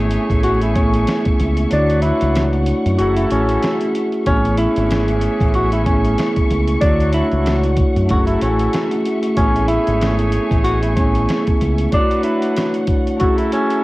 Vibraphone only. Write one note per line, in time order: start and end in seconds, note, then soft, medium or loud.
0.00 0.34 A3 medium
0.00 0.35 B3 medium
0.00 0.39 C#4 medium
0.00 0.36 E4 medium
0.00 0.37 G#4 medium
0.73 1.64 A3 medium
0.73 1.65 B3 medium
0.73 1.65 C#4 medium
0.73 1.66 E4 medium
0.78 1.67 G#4 medium
1.69 2.90 A3 medium
1.69 2.91 D4 medium
1.69 2.92 E4 medium
1.69 2.90 C#5 medium
1.74 2.92 F#4 medium
2.96 3.27 A3 medium
2.96 3.28 C#4 medium
2.96 3.28 E4 medium
2.96 3.29 F#4 medium
3.01 3.30 G#4 medium
3.28 4.19 A3 medium
3.28 4.20 C#4 medium
3.28 4.20 E4 medium
3.28 4.21 F#4 medium
3.33 4.22 G#4 medium
4.24 5.45 A3 medium
4.24 5.46 B3 medium
4.24 4.34 C4 medium
4.24 5.47 E4 medium
4.29 5.47 G#4 medium
4.33 5.50 C#4 medium
5.84 6.75 A3 medium
5.84 6.75 B3 medium
5.84 6.76 C#4 medium
5.84 6.77 E4 medium
5.89 6.77 G#4 medium
6.80 8.00 A3 medium
6.80 8.02 D4 medium
6.80 8.02 E4 medium
6.80 8.01 C#5 medium
6.85 8.03 F#4 medium
8.06 8.37 A3 medium
8.06 8.38 C#4 medium
8.06 8.39 E4 medium
8.06 8.40 F#4 medium
8.11 8.40 G#4 medium
8.39 9.30 A3 medium
8.39 9.30 C#4 medium
8.39 9.31 E4 medium
8.39 9.32 F#4 medium
8.43 9.32 G#4 medium
9.35 10.56 A3 medium
9.35 10.56 B3 medium
9.35 9.45 C4 medium
9.35 10.57 E4 medium
9.40 10.58 G#4 medium
9.44 10.60 C#4 medium
10.95 11.85 A3 medium
10.95 11.86 B3 medium
10.95 11.87 C#4 medium
10.95 11.87 E4 medium
11.00 11.88 G#4 medium
11.91 13.11 A3 medium
11.91 13.12 D4 medium
11.91 13.13 E4 medium
11.91 13.12 C#5 medium
11.95 13.14 F#4 medium
13.17 13.48 A3 medium
13.17 13.49 C#4 medium
13.17 13.50 E4 medium
13.17 13.50 F#4 medium
13.22 13.51 G#4 medium
13.49 13.84 A3 medium
13.49 13.84 C#4 medium
13.49 13.84 E4 medium
13.49 13.84 F#4 medium
13.54 13.84 G#4 medium